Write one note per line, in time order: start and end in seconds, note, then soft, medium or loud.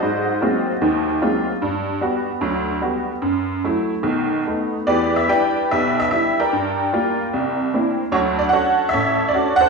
0.00 0.38 G#2 medium
0.00 1.06 F#4 medium
0.00 1.07 C5 medium
0.00 1.07 D#5 medium
0.41 0.70 F#3 soft
0.41 0.70 G#3 soft
0.41 0.70 A#3 soft
0.41 0.71 C4 soft
0.41 0.71 F4 soft
0.81 1.17 D#2 medium
0.81 1.17 D#3 medium
1.21 1.50 F#3 soft
1.21 1.50 G#3 soft
1.21 1.51 A#3 soft
1.21 1.51 C4 soft
1.21 1.51 F4 medium
1.62 1.97 G2 medium
2.01 2.30 G3 soft
2.01 2.30 B3 soft
2.01 2.31 F#4 medium
2.41 2.77 D2 medium
2.41 2.77 F#3 medium
2.81 3.11 G3 soft
2.81 3.11 B3 soft
2.81 3.11 F#4 soft
3.22 3.58 F#2 medium
3.64 3.93 F#3 soft
3.64 3.93 A3 soft
3.64 3.93 E4 medium
4.03 4.40 B1 medium
4.03 4.40 D#3 medium
4.46 4.76 A3 soft
4.46 4.77 B3 soft
4.46 4.77 D#4 medium
4.87 5.23 E2 medium
4.87 5.24 E3 medium
4.87 5.67 G4 medium
4.87 5.29 B4 medium
4.87 5.16 D5 medium
5.16 5.30 E5 medium
5.28 5.58 G3 soft
5.28 5.58 D4 soft
5.28 5.58 E4 medium
5.28 5.71 B4 medium
5.28 6.08 D5 medium
5.28 5.68 G5 medium
5.71 6.07 B1 medium
5.71 6.07 B2 medium
5.71 6.49 G4 medium
5.71 6.49 B4 medium
5.71 5.97 E5 medium
6.00 6.05 E5 medium
6.11 6.41 G3 soft
6.11 6.41 D4 soft
6.11 6.41 E4 soft
6.11 6.40 E5 medium
6.40 7.56 A#4 medium
6.40 7.56 D5 medium
6.40 7.56 G5 medium
6.53 6.88 G2 medium
6.93 7.21 G3 soft
6.93 7.21 A#3 soft
6.93 7.22 F4 medium
7.33 7.68 C2 medium
7.74 8.02 A#3 soft
7.74 8.02 C4 soft
7.74 8.02 D4 soft
7.74 8.02 E4 soft
8.12 8.47 D2 medium
8.12 8.48 F#3 medium
8.12 8.52 F#4 medium
8.12 8.52 A4 medium
8.12 8.18 C#5 medium
8.39 8.44 D5 medium
8.49 8.81 C#4 medium
8.49 8.81 D4 soft
8.49 8.92 C#5 medium
8.49 8.89 F#5 medium
8.53 8.82 F#4 medium
8.53 8.92 A4 medium
8.89 9.33 E5 medium
8.93 9.29 A1 medium
8.93 9.59 A4 medium
8.93 9.69 C#5 medium
9.29 9.56 D5 medium
9.33 9.62 C#4 soft
9.33 9.62 D4 soft
9.33 9.63 F#4 medium
9.56 9.69 F#5 loud
9.61 9.69 A4 medium
9.61 9.69 C5 medium